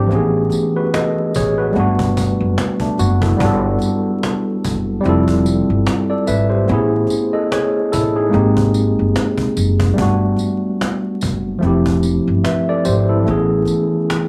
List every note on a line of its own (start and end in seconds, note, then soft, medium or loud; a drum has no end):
0.00 0.13 F3 medium
0.00 0.09 A3 medium
0.00 0.13 C4 medium
0.00 0.33 D4 soft
0.00 0.13 E4 medium
0.00 0.33 G4 medium
0.00 0.12 A4 medium
0.00 0.12 C5 medium
0.00 0.13 D5 medium
0.07 1.70 E3 medium
0.07 1.71 A3 medium
0.07 1.72 B3 medium
0.07 cajon slap soft
0.12 0.47 A1 loud
0.12 1.73 C#4 medium
0.12 0.53 G#4 medium
0.50 cajon slap soft
0.50 tambourine soft
0.76 0.93 F#4 medium
0.76 0.93 B4 medium
0.94 1.33 A4 medium
0.94 1.33 D#5 medium
0.94 cajon slap loud
1.35 1.71 A1 medium
1.35 1.57 G#4 medium
1.35 1.57 C#5 medium
1.35 cajon bass medium
1.35 tambourine medium
1.58 1.78 F#4 soft
1.58 1.97 B4 medium
1.72 3.35 G3 medium
1.72 2.15 A3 medium
1.72 2.16 B3 medium
1.72 cajon slap soft
1.76 2.31 G1 medium
1.76 2.17 D4 medium
1.76 2.18 F#4 medium
1.99 cajon bass medium
2.17 cajon bass medium
2.17 tambourine soft
2.40 2.55 F#1 medium
2.58 cajon slap loud
2.80 2.98 A3 medium
2.80 2.98 D4 medium
2.80 cajon bass medium
2.98 3.35 F#1 medium
2.98 3.21 B3 medium
2.98 3.21 F#4 medium
2.98 cajon slap soft
2.98 tambourine medium
3.22 3.62 E4 soft
3.22 3.44 A4 medium
3.22 cajon bass loud
3.37 3.76 G1 loud
3.37 5.00 G3 medium
3.37 5.01 B3 medium
3.37 5.01 D4 medium
3.37 cajon bass loud
3.43 5.03 F#4 medium
3.43 5.03 A4 medium
3.79 cajon slap soft
3.79 tambourine soft
4.23 cajon slap loud
4.64 5.00 F#1 medium
4.64 cajon bass medium
4.64 tambourine medium
5.01 6.64 G3 medium
5.01 6.65 C4 medium
5.01 cajon slap soft
5.05 5.60 F1 medium
5.05 6.66 E4 medium
5.05 6.67 F4 medium
5.05 5.87 A4 medium
5.28 cajon bass medium
5.46 cajon slap soft
5.46 tambourine soft
5.70 5.85 G1 medium
5.87 cajon slap loud
6.10 6.27 A4 medium
6.10 6.27 D5 medium
6.27 6.63 G#1 medium
6.27 6.50 B4 medium
6.27 6.50 E5 medium
6.27 cajon slap soft
6.27 tambourine medium
6.50 6.90 G4 soft
6.50 6.89 C5 medium
6.66 7.04 A1 loud
6.66 8.28 A3 medium
6.66 8.29 B3 medium
6.66 8.30 C#4 medium
6.66 cajon slap soft
6.72 7.10 E4 medium
6.72 7.11 G#4 medium
7.07 cajon slap soft
7.07 tambourine soft
7.33 7.50 A4 medium
7.33 7.50 D#5 medium
7.52 7.91 G#4 medium
7.52 7.90 C#5 medium
7.52 cajon slap loud
7.92 8.28 A1 medium
7.92 8.15 E4 medium
7.92 8.14 A4 medium
7.92 cajon bass medium
7.92 tambourine medium
8.16 8.34 D#4 soft
8.16 8.55 G#4 medium
8.29 9.92 G#3 medium
8.29 9.93 A#3 medium
8.29 cajon slap soft
8.33 8.89 G#1 medium
8.33 9.94 C4 medium
8.33 9.95 D#4 medium
8.33 9.96 G4 medium
8.57 cajon bass medium
8.74 cajon slap soft
8.74 tambourine medium
8.99 9.14 G1 medium
9.16 cajon slap loud
9.38 cajon bass medium
9.56 9.92 F#1 medium
9.56 cajon slap soft
9.56 tambourine medium
9.80 cajon bass loud
9.94 11.57 G3 medium
9.94 11.58 A3 medium
9.94 11.58 B3 medium
9.98 10.33 G1 medium
9.98 11.60 D4 medium
9.98 11.61 F#4 medium
9.98 cajon bass loud
10.37 cajon slap soft
10.37 tambourine soft
10.81 cajon slap loud
11.21 11.57 F#1 medium
11.21 cajon bass medium
11.21 tambourine medium
11.59 12.18 F1 medium
11.59 13.21 F3 medium
11.59 13.22 A3 medium
11.59 cajon slap soft
11.63 13.23 C4 medium
11.63 12.44 E4 medium
11.63 12.45 G4 medium
11.86 cajon bass medium
12.03 cajon slap soft
12.03 tambourine soft
12.28 12.42 G1 medium
12.44 12.66 B4 soft
12.44 12.66 E5 medium
12.44 cajon slap medium
12.69 12.85 A4 medium
12.69 12.85 D5 medium
12.84 13.21 G#1 medium
12.84 13.07 G4 medium
12.84 13.07 C5 medium
12.84 cajon slap soft
12.84 tambourine medium
13.09 13.48 E4 medium
13.09 13.48 A4 medium
13.23 14.29 E3 medium
13.23 14.29 A3 medium
13.23 cajon slap soft
13.27 13.62 A1 medium
13.27 14.29 B3 medium
13.27 14.29 C#4 medium
13.27 14.29 G#4 medium
13.65 cajon slap soft
13.65 tambourine soft
14.10 cajon slap medium